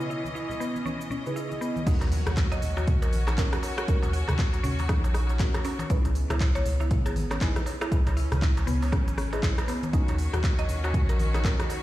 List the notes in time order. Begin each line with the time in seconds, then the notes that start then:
Already playing: B2 C#3 E3 C#4 D#4 E4 G#4 B4 D#5
0.00 cabasa
0.10 E4, cabasa
0.25 high conga, cabasa
0.35 E4, muted conga, cabasa
0.50 low conga, cabasa
0.60 B3, cabasa
0.76 muted conga, cabasa
0.85 C#4, high conga, cabasa
1.01 cabasa
1.10 C#4, muted conga, low conga, cabasa
1.26 C#3 D#4 E4 G#4 B4, cabasa
1.36 E4, cabasa
1.51 muted conga, cabasa
1.61 B3, cabasa
1.76 high conga, cabasa
1.86 D#2 C#4 D#4 F#4 A#4, kick, closed hi-hat, crash, impact, cabasa
2.01 closed hi-hat, darbuka tek, low conga, cabasa
2.12 open hi-hat, cabasa
2.27 D#2 F#4, cross-stick, closed hi-hat, high conga, darbuka tek, low conga, cabasa
2.36 kick, clap, closed hi-hat, muted conga, cabasa
2.52 D#5, closed hi-hat, darbuka tek, cabasa
2.62 D#2, open hi-hat, low conga, cabasa
2.77 F#4, muted conga, darbuka tek, cabasa
2.87 kick, closed hi-hat, darbuka dum, cabasa
3.02 A#1 A#4, closed hi-hat, darbuka ka, darbuka tek, cabasa
3.13 open hi-hat, muted conga, high conga, cabasa
3.27 D#4, cross-stick, clap, closed hi-hat, high conga, darbuka tek, cabasa
3.38 D#2 C#4 D#4 F#4 A#4, kick, clap, closed hi-hat, darbuka ka, cabasa
3.53 F#4, cross-stick, closed hi-hat, muted conga, darbuka tek, cabasa
3.63 open hi-hat, darbuka ka, cabasa
3.77 F#4, cross-stick, closed hi-hat, darbuka tek, cabasa
3.88 D#2 C#4 D#4 F#4 A#4, kick, closed hi-hat, muted conga, cabasa
4.02 closed hi-hat, darbuka tek, low conga, cabasa
4.13 F#4, open hi-hat, cabasa
4.28 D#2, cross-stick, closed hi-hat, darbuka tek, high conga, low conga, darbuka dum, cabasa
4.37 F#4, kick, clap, closed hi-hat, muted conga, cabasa
4.53 closed hi-hat, darbuka tek, cabasa
4.63 D#2 C#4, open hi-hat, low conga, darbuka dum, cabasa
4.79 open hi-hat, muted conga, darbuka tek, cabasa
4.88 D#4, kick, cross-stick, closed hi-hat, darbuka ka, high conga, cabasa
5.04 A#1, closed hi-hat, darbuka tek, cabasa
5.14 D#4, cross-stick, open hi-hat, muted conga, cabasa
5.29 closed hi-hat, darbuka tek, cabasa
5.39 D#2 C#4 D#4 F#4 A#4, kick, clap, closed hi-hat, cabasa
5.54 cross-stick, closed hi-hat, muted conga, darbuka tek, cabasa
5.65 C#4, open hi-hat, darbuka ka, cabasa
5.79 closed hi-hat, high conga, darbuka tek, cabasa
5.90 C#2 B3 C#4 D#4 E4 G#4 B4, kick, closed hi-hat, muted conga, cabasa
6.05 closed hi-hat, darbuka tek, low conga, cabasa
6.15 open hi-hat, cabasa
6.30 C#2 E4, cross-stick, closed hi-hat, high conga, darbuka tek, low conga, cabasa
6.40 kick, clap, closed hi-hat, muted conga, cabasa
6.55 C#5, closed hi-hat, darbuka tek, cabasa
6.65 C#2, open hi-hat, low conga, cabasa
6.80 E4, muted conga, darbuka tek, cabasa
6.91 kick, closed hi-hat, darbuka dum, cabasa
7.06 G#1 G#4, closed hi-hat, darbuka ka, darbuka tek, cabasa
7.16 open hi-hat, muted conga, high conga, cabasa
7.31 C#4, cross-stick, clap, closed hi-hat, darbuka tek, high conga, cabasa
7.41 C#2 D#4 E4 G#4 B4, kick, clap, closed hi-hat, darbuka ka, cabasa
7.56 E4, cross-stick, closed hi-hat, muted conga, darbuka tek, cabasa
7.66 open hi-hat, darbuka ka, cabasa
7.81 E4, cross-stick, closed hi-hat, darbuka tek, cabasa
7.92 C#2 C#4 D#4 E4 G#4 B4, kick, closed hi-hat, muted conga, cabasa
8.06 closed hi-hat, darbuka tek, low conga, cabasa
8.17 E4, open hi-hat, cabasa
8.32 C#2, cross-stick, closed hi-hat, darbuka tek, high conga, low conga, darbuka dum, cabasa
8.42 E4, kick, clap, closed hi-hat, cabasa
8.57 closed hi-hat, darbuka tek, cabasa
8.66 C#2 B3, open hi-hat, low conga, darbuka dum, cabasa
8.82 open hi-hat, muted conga, darbuka tek, cabasa
8.92 C#4, kick, cross-stick, closed hi-hat, darbuka ka, high conga, cabasa
9.07 G#1, closed hi-hat, darbuka tek, cabasa
9.18 C#4, cross-stick, open hi-hat, muted conga, cabasa
9.33 D#4 E4 G#4 B4, closed hi-hat, darbuka tek, cabasa
9.43 C#2 E4, kick, clap, closed hi-hat, cabasa
9.58 cross-stick, closed hi-hat, muted conga, darbuka tek, cabasa
9.68 B3, open hi-hat, darbuka ka, cabasa
9.83 closed hi-hat, high conga, darbuka tek, cabasa
9.93 D#2 D#3 C#4 D#4 F#4 A#4, kick, closed hi-hat, muted conga, cabasa
10.08 closed hi-hat, darbuka tek, low conga, cabasa
10.18 open hi-hat, cabasa
10.33 D#2 F#4, cross-stick, closed hi-hat, high conga, darbuka tek, low conga, cabasa
10.44 kick, clap, closed hi-hat, muted conga, cabasa
10.59 D#5, closed hi-hat, darbuka tek, cabasa
10.69 D#2, open hi-hat, low conga, cabasa
10.84 F#4, muted conga, darbuka tek, cabasa
10.93 kick, closed hi-hat, darbuka dum, cabasa
11.09 A#1 A#4, closed hi-hat, darbuka ka, darbuka tek, cabasa
11.19 open hi-hat, muted conga, high conga, cabasa
11.34 D#4, cross-stick, clap, closed hi-hat, darbuka tek, high conga, cabasa
11.45 D#2 C#4 D#4 F#4 A#4, kick, clap, closed hi-hat, darbuka ka, cabasa
11.60 F#4, cross-stick, closed hi-hat, muted conga, darbuka tek, cabasa
11.69 open hi-hat, darbuka ka, cabasa